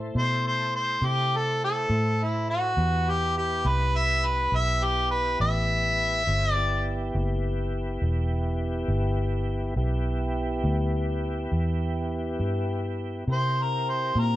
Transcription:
0.00 0.12 A2 medium
0.00 2.74 A3 medium
0.00 2.73 E4 medium
0.00 2.73 A4 medium
0.00 2.73 C5 medium
0.15 0.99 B2 medium
0.15 0.43 C5 medium
0.47 0.73 C5 medium
0.76 1.08 C5 medium
1.02 1.86 C3 medium
1.06 1.38 G4 medium
1.36 1.63 A4 medium
1.64 2.25 A4 medium
1.90 2.74 A2 medium
2.23 2.50 E4 medium
2.50 3.12 F#4 medium
2.77 3.61 E2 medium
2.77 6.23 B3 medium
2.77 6.23 E4 medium
2.77 6.23 G4 medium
2.77 6.23 B4 medium
3.10 3.37 G4 medium
3.38 3.69 G4 medium
3.65 4.49 C2 medium
3.65 3.98 B4 medium
3.96 4.27 E5 medium
4.26 4.57 B4 medium
4.52 5.37 B1 medium
4.56 4.86 E5 medium
4.84 5.10 G4 medium
5.11 5.38 B4 medium
5.40 6.24 A1 medium
5.40 6.53 E5 medium
6.27 7.12 G1 medium
6.27 6.56 C4 medium
6.27 6.56 F4 medium
6.27 6.56 G#4 medium
6.53 9.75 B3 medium
6.53 9.74 E4 medium
6.53 9.74 G4 medium
6.53 7.11 D5 medium
7.15 7.99 F#1 medium
8.02 8.87 E1 medium
8.88 9.74 G1 medium
9.76 10.62 B1 medium
9.76 13.25 B3 medium
9.76 13.25 E4 medium
9.76 13.25 G4 medium
10.64 11.49 D2 medium
11.52 12.37 E2 medium
12.40 13.25 G2 medium
13.28 14.13 C3 medium
13.28 14.36 C4 medium
13.28 14.36 E4 medium
13.28 14.36 G4 medium
13.28 14.36 A#4 medium
13.32 13.65 C5 medium
13.63 13.91 A#4 medium
13.89 14.20 C5 medium
14.15 14.36 A#2 medium
14.15 14.36 A#4 medium

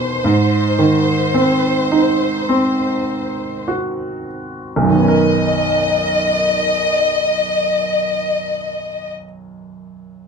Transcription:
0.00 0.20 E2 medium
0.00 0.21 B2 soft
0.00 0.20 D#3 soft
0.00 3.70 C5 medium
0.24 4.89 G#2 medium
0.79 3.04 D#3 soft
1.34 2.48 C4 soft
1.92 4.26 D#4 soft
2.49 4.89 C4 soft
3.68 4.89 F#4 soft
4.76 8.91 B1 soft
4.83 8.97 F#2 soft
4.89 9.04 D#3 soft
4.94 9.10 B3 soft
4.94 9.08 D#5 medium
5.02 9.17 C#4 soft
5.08 9.23 A#4 soft

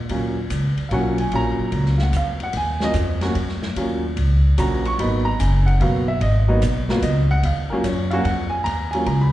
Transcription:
0.09 0.49 D#2 medium
0.09 0.35 F#3 medium
0.09 0.35 A#3 medium
0.09 0.35 C#4 medium
0.09 0.35 F4 medium
0.09 kick soft
0.09 ride medium
0.50 0.76 C#2 medium
0.50 kick soft
0.50 hi-hat pedal medium
0.50 ride medium
0.77 muted upright bass stroke soft
0.77 ride soft
0.89 1.31 B1 medium
0.89 1.16 F#3 medium
0.89 1.17 A#3 medium
0.89 1.17 C#4 medium
0.89 1.17 F4 medium
0.89 0.92 F5 medium
0.89 kick soft
0.89 ride medium
0.94 1.19 F#5 medium
1.18 1.32 G#5 medium
1.18 ride soft
1.31 1.57 A#1 medium
1.31 2.47 F#3 medium
1.31 2.47 A#3 medium
1.31 2.47 C#4 medium
1.31 2.47 F4 medium
1.31 kick soft
1.31 ride medium
1.36 1.98 A#5 medium
1.58 muted upright bass stroke soft
1.72 2.12 C#2 medium
1.72 kick soft
1.72 ride medium
1.86 snare soft
1.98 2.00 F5 medium
1.98 snare soft
2.03 2.15 F#5 medium
2.13 2.53 F2 medium
2.13 2.42 F5 medium
2.13 kick soft
2.13 hi-hat pedal soft
2.13 ride medium
2.40 2.55 F#5 medium
2.40 ride soft
2.53 2.93 D#2 medium
2.53 kick soft
2.53 ride medium
2.57 2.82 G#5 medium
2.80 2.94 F#3 medium
2.80 2.94 A#3 medium
2.80 2.94 C#4 medium
2.80 2.94 F4 medium
2.80 2.92 D#5 loud
2.80 snare medium
2.94 3.34 F2 medium
2.94 kick soft
2.94 hi-hat pedal soft
2.94 ride medium
3.21 3.35 F#3 medium
3.21 3.34 A#3 medium
3.21 3.35 C#4 medium
3.21 3.35 F#4 medium
3.21 snare soft
3.21 ride soft
3.35 3.75 F#2 medium
3.35 kick soft
3.35 ride medium
3.49 snare soft
3.62 snare soft
3.76 4.16 D#2 medium
3.76 4.02 F#3 medium
3.76 4.02 A#3 medium
3.76 4.02 C#4 medium
3.76 4.02 F4 medium
3.76 kick soft
3.76 ride medium
4.16 4.57 C#2 medium
4.16 kick soft
4.16 ride medium
4.58 4.98 A#1 medium
4.58 4.83 F#3 medium
4.58 4.83 A#3 medium
4.58 4.83 C#4 medium
4.58 4.83 F#4 medium
4.58 4.86 A#5 medium
4.58 kick soft
4.58 hi-hat pedal medium
4.58 ride medium
4.85 4.99 C#6 loud
4.85 ride soft
4.98 5.38 G#1 medium
4.98 5.24 F#3 medium
4.98 5.24 A#3 medium
4.98 5.24 B3 medium
4.98 5.24 D#4 medium
4.98 5.26 B5 medium
4.98 kick soft
4.98 ride medium
5.25 5.39 A#5 medium
5.39 5.79 F#1 medium
5.39 5.66 G#5 medium
5.39 kick soft
5.39 hi-hat pedal medium
5.39 ride medium
5.66 5.80 F#5 medium
5.66 ride soft
5.80 6.20 B1 medium
5.80 6.06 F#3 medium
5.80 6.06 A#3 medium
5.80 6.06 B3 medium
5.80 6.06 F#4 medium
5.80 6.08 F5 medium
5.80 kick soft
5.80 ride medium
6.08 6.21 E5 medium
6.21 6.61 G#1 medium
6.21 6.38 D#5 medium
6.21 kick soft
6.21 ride medium
6.48 6.61 F#3 medium
6.48 6.61 A#3 medium
6.48 6.61 B3 medium
6.48 6.61 D#4 medium
6.61 7.01 B1 medium
6.61 kick soft
6.61 hi-hat pedal medium
6.61 ride medium
6.89 7.02 F#3 medium
6.89 7.02 A#3 medium
6.89 7.02 B3 medium
6.89 7.02 F4 medium
6.89 snare medium
7.02 7.42 C#2 medium
7.02 7.29 D#5 medium
7.02 kick soft
7.02 hi-hat pedal soft
7.02 ride medium
7.31 7.44 F#5 loud
7.43 7.69 D#2 medium
7.43 7.71 F5 medium
7.43 kick soft
7.43 ride medium
7.70 7.84 F#3 medium
7.70 7.84 A#3 medium
7.70 7.84 C#4 medium
7.70 7.84 F4 medium
7.70 7.84 A#4 medium
7.70 muted upright bass stroke soft
7.84 8.24 F#2 medium
7.84 8.11 C#5 medium
7.84 kick soft
7.84 hi-hat pedal soft
7.84 ride medium
8.11 8.24 F#3 medium
8.11 8.25 A#3 medium
8.11 8.25 C#4 medium
8.11 8.25 F#4 loud
8.11 8.24 F5 medium
8.11 ride soft
8.24 8.64 F2 medium
8.24 8.51 F#5 medium
8.24 kick soft
8.24 ride medium
8.50 8.64 G#5 medium
8.64 9.05 D#2 medium
8.64 8.92 A#5 medium
8.64 kick soft
8.64 ride medium
8.91 9.06 F#3 medium
8.91 9.06 A#3 medium
8.91 9.06 C#4 medium
8.91 9.06 F4 medium
8.91 9.05 G#5 medium
8.91 ride soft
9.06 9.32 C#2 medium
9.06 9.20 A#5 medium
9.06 kick soft
9.06 ride medium
9.21 9.32 B5 medium

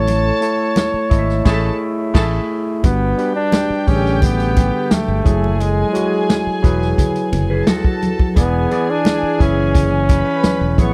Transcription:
0.00 0.30 A1 loud
0.00 0.28 A3 medium
0.00 0.29 E4 medium
0.00 0.29 A4 medium
0.00 1.42 A4 medium
0.00 0.30 C#5 medium
0.00 2.16 C#5 loud
0.00 1.42 A5 loud
0.07 closed hi-hat medium
0.07 muted conga medium
0.41 0.97 A3 medium
0.41 0.98 E4 medium
0.41 0.98 A4 medium
0.41 0.99 C#5 medium
0.41 closed hi-hat medium
0.76 snare loud
0.76 closed hi-hat medium
0.76 high conga medium
0.94 muted fingered electric bass stroke soft
1.10 1.40 G#1 loud
1.10 1.44 A3 medium
1.10 1.44 E4 medium
1.10 1.46 A4 medium
1.10 1.18 D#5 medium
1.10 kick medium
1.10 closed hi-hat medium
1.19 1.49 E5 loud
1.29 snare soft
1.45 1.69 A1 loud
1.45 1.69 A3 loud
1.45 1.69 E4 loud
1.45 1.70 G#4 loud
1.45 1.70 A4 loud
1.45 1.70 A5 loud
1.45 kick loud
1.45 snare loud
1.45 crash medium
1.54 1.74 E5 loud
2.14 2.38 A1 loud
2.14 2.38 A3 medium
2.14 2.38 E4 loud
2.14 2.38 G#4 medium
2.14 2.38 A4 loud
2.14 2.38 A5 loud
2.14 kick loud
2.14 snare loud
2.14 crash medium
2.23 2.43 E5 medium
2.83 3.13 G1 loud
2.83 3.11 G3 medium
2.83 3.33 B3 loud
2.83 3.12 D4 medium
2.83 3.12 F#4 medium
2.83 5.21 G4 medium
2.83 3.12 B4 medium
2.83 5.21 G5 loud
2.83 kick loud
2.83 closed hi-hat medium
2.83 muted conga medium
3.17 3.74 G3 medium
3.17 3.74 D4 medium
3.17 3.74 G4 medium
3.17 3.75 B4 medium
3.17 closed hi-hat medium
3.35 3.89 D4 loud
3.52 snare loud
3.52 closed hi-hat medium
3.52 high conga medium
3.70 muted fingered electric bass stroke medium
3.87 4.70 A1 medium
3.87 4.99 D3 medium
3.87 4.99 G3 medium
3.87 4.22 C#4 loud
3.87 4.99 G4 medium
3.87 3.95 G#4 medium
3.87 kick loud
3.87 open hi-hat soft
3.95 5.03 A4 medium
4.05 snare soft
4.22 4.93 B3 loud
4.22 kick loud
4.22 closed hi-hat loud
4.22 muted conga medium
4.22 low conga medium
4.40 closed hi-hat medium
4.56 kick loud
4.56 closed hi-hat medium
4.56 muted conga medium
4.91 5.62 A3 medium
4.91 muted fingered electric bass stroke soft
4.91 snare loud
4.91 closed hi-hat medium
4.91 high conga medium
5.08 5.23 G1 medium
5.24 5.83 F#1 loud
5.24 5.81 F#3 medium
5.24 5.81 E4 medium
5.24 7.63 G#4 medium
5.24 5.82 G#4 medium
5.24 5.82 A4 medium
5.24 7.63 G#5 loud
5.24 kick loud
5.24 closed hi-hat medium
5.24 high conga medium
5.44 high conga medium
5.60 6.64 G#3 medium
5.60 closed hi-hat medium
5.60 muted conga medium
5.93 6.50 F#3 medium
5.93 6.50 E4 medium
5.93 6.51 F#4 medium
5.93 6.51 G#4 medium
5.93 closed hi-hat medium
5.93 muted conga soft
6.29 snare loud
6.29 closed hi-hat medium
6.29 high conga medium
6.47 muted fingered electric bass stroke soft
6.62 6.93 E1 loud
6.62 7.75 F#3 medium
6.62 7.75 E4 medium
6.62 7.75 G#4 medium
6.62 7.76 B4 loud
6.62 kick loud
6.62 closed hi-hat medium
6.82 snare soft
6.98 kick loud
6.98 closed hi-hat loud
6.98 muted conga medium
6.98 low conga medium
7.15 closed hi-hat medium
7.32 7.61 F#1 medium
7.32 closed hi-hat medium
7.32 muted conga medium
7.32 low conga medium
7.50 7.67 G#4 medium
7.50 7.67 B4 medium
7.66 7.83 F#4 medium
7.66 8.35 A4 medium
7.66 7.84 A4 medium
7.66 8.35 A5 loud
7.66 snare loud
7.66 closed hi-hat medium
7.66 high conga medium
7.84 8.34 F#4 medium
7.84 kick loud
8.02 closed hi-hat medium
8.02 high conga medium
8.19 kick medium
8.19 high conga medium
8.35 8.65 E1 loud
8.35 8.64 E3 medium
8.35 8.64 E4 medium
8.35 8.64 G#4 medium
8.35 10.06 G#4 medium
8.35 8.65 D5 medium
8.35 10.06 G#5 loud
8.35 kick loud
8.35 closed hi-hat loud
8.35 muted conga medium
8.39 8.92 B3 loud
8.70 9.26 E3 medium
8.70 9.27 E4 medium
8.70 9.27 G#4 medium
8.70 9.28 D5 medium
8.70 closed hi-hat medium
8.70 muted conga soft
8.91 9.43 D4 loud
9.05 snare loud
9.05 closed hi-hat medium
9.05 high conga medium
9.23 muted fingered electric bass stroke medium
9.38 10.22 F#1 loud
9.38 10.51 E3 medium
9.38 10.79 C#4 loud
9.38 10.51 E4 medium
9.38 10.51 G#4 medium
9.38 10.52 E5 medium
9.38 kick medium
9.38 closed hi-hat medium
9.75 kick medium
9.75 closed hi-hat loud
9.75 muted conga medium
9.75 low conga medium
10.09 10.77 B4 medium
10.09 10.77 B5 loud
10.09 kick loud
10.09 closed hi-hat medium
10.09 muted conga medium
10.44 muted fingered electric bass stroke soft
10.44 snare loud
10.44 closed hi-hat medium
10.44 high conga medium
10.61 10.75 E1 medium
10.77 10.94 A1 loud
10.77 10.94 A3 medium
10.77 10.94 B3 medium
10.77 10.94 E4 medium
10.77 10.94 G#4 medium
10.77 10.94 C#5 medium
10.77 10.94 C#6 medium
10.77 kick loud
10.77 closed hi-hat medium
10.77 high conga medium

